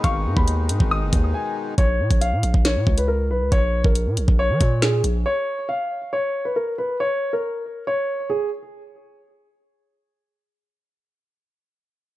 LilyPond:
<<
  \new Staff \with { instrumentName = "Synth pluck" } { \time 4/4 \key bes \phrygian \tempo 4 = 138 f''4 r2. | r1 | r1 | r1 |
r1 | r1 | r1 | }
  \new Staff \with { instrumentName = "Grand piano" } { \time 4/4 \key bes \phrygian des'''8. ces'''4~ ces'''16 ees'''4 aes''8 r8 | des''4 f''4 des''8. ces''16 bes'8 ces''8 | des''8. bes'4~ bes'16 des''4 aes'8 r8 | des''4 f''4 des''8. ces''16 bes'8 ces''8 |
des''8. bes'4~ bes'16 des''4 aes'8 r8 | r1 | r1 | }
  \new Staff \with { instrumentName = "Accordion" } { \clef bass \time 4/4 \key bes \phrygian <ces ees aes ees'>1 | r1 | r1 | r1 |
r1 | r1 | r1 | }
  \new Staff \with { instrumentName = "808-style bass" } { \clef bass \time 4/4 \key bes \phrygian aes,,8 aes,16 ees,8. aes,16 aes,,8 ges,,16 ees,8 r4 | bes,,8 bes,16 bes,,8 bes,16 bes,,16 bes,,8 bes,16 des,4 ces,16 des,16 | bes,,8. bes,,8 bes,16 bes,,16 bes,,8 f16 bes,4 bes,,8 | r1 |
r1 | r1 | r1 | }
  \new DrumStaff \with { instrumentName = "Drums" } \drummode { \time 4/4 <hh bd>8. bd16 hh8 hh16 bd16 r8 <hh bd>8 r4 | <hh bd>8. <hh bd>16 hh8 hh16 bd16 <hh sn>8 bd16 hh16 r4 | <hh bd>8. bd16 hh8 hh16 bd16 r8 <hh bd>8 <hh sn>8 hh8 | r4 r4 r4 r4 |
r4 r4 r4 r4 | r4 r4 r4 r4 | r4 r4 r4 r4 | }
>>